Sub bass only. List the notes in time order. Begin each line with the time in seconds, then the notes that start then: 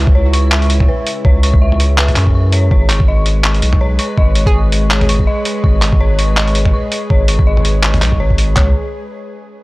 0.07 C#2
1.25 C#2
1.54 C#2
2.17 F#2
2.71 G#1
3.63 B1
4.18 G#1
4.46 G#1
5.64 G#1
5.93 G#1
7.10 G#1
7.39 G#1
8.02 B1
8.20 G#1
8.57 C#2